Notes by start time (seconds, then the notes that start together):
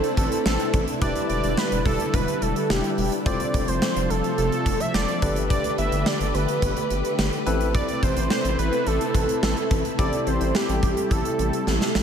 Already playing: C3 A3 C4 D4 E4 A4 C5
0.04 closed hi-hat
0.17 A1 C4 E4 A4 B4, kick, closed hi-hat
0.32 closed hi-hat
0.46 A1 A4, snare
0.60 closed hi-hat
0.74 A1, kick, closed hi-hat
0.88 closed hi-hat
1.01 E1 D3 G3 D4 E4 G4 B4 D5, kick, closed hi-hat
1.16 closed hi-hat
1.30 E1 D5, closed hi-hat
1.44 E1, closed hi-hat
1.58 B4, snare
1.72 E1, closed hi-hat
1.86 E1 A4, kick, open hi-hat
2.00 closed hi-hat
2.14 E1 B4, kick, closed hi-hat
2.28 closed hi-hat
2.42 E1 A4, closed hi-hat
2.56 closed hi-hat
2.70 E1 G4, snare
2.84 closed hi-hat
2.98 E1, open hi-hat
3.12 closed hi-hat
3.26 F1 C3 F3 A3 C4 F4 A4 C5 D5, kick, closed hi-hat
3.40 closed hi-hat
3.54 F1, kick, closed hi-hat
3.68 F1 C5, closed hi-hat
3.82 snare
3.96 F1, closed hi-hat
4.10 F1 A4, closed hi-hat
4.24 closed hi-hat
4.38 F1 A4, closed hi-hat
4.52 closed hi-hat
4.66 F1, kick, closed hi-hat
4.80 E5, closed hi-hat
4.94 F1 D5, snare
5.08 closed hi-hat
5.22 G1 D3 D4 G4 A4 B4, kick, closed hi-hat
5.36 closed hi-hat
5.50 D5, kick, closed hi-hat
5.64 closed hi-hat
5.78 G1 E5, closed hi-hat
5.92 G1, closed hi-hat
6.06 D5, snare
6.20 G1, closed hi-hat
6.34 G1 B4, closed hi-hat
6.48 closed hi-hat
6.62 G1, kick, closed hi-hat
6.77 closed hi-hat
6.90 G1, closed hi-hat
7.05 closed hi-hat
7.19 G1, snare
7.33 closed hi-hat
7.46 A1 C3 C4 E4 A4 B4, closed hi-hat
7.61 closed hi-hat
7.75 D5, kick, closed hi-hat
7.89 closed hi-hat
8.03 A1 C5, kick, closed hi-hat
8.17 A1, closed hi-hat
8.30 C5, snare
8.45 A1, closed hi-hat
8.59 A1 B4, closed hi-hat
8.73 closed hi-hat
8.87 A1 A4, closed hi-hat
9.01 closed hi-hat
9.14 A1 C4 E4 A4 B4, kick, closed hi-hat
9.29 closed hi-hat
9.43 A1 A4, snare
9.57 closed hi-hat
9.71 A1, kick, closed hi-hat
9.85 closed hi-hat
9.99 A1 G3 C4 E4 G4 A4 D5, kick, closed hi-hat
10.13 closed hi-hat
10.27 A1 C5, closed hi-hat
10.41 A1, closed hi-hat
10.55 G4, snare
10.69 A1, closed hi-hat
10.83 A1, kick, closed hi-hat
10.97 closed hi-hat
11.11 A1 A4, kick, closed hi-hat
11.25 closed hi-hat
11.39 A1, closed hi-hat
11.53 closed hi-hat
11.67 A1, snare
11.81 snare
11.95 A1, snare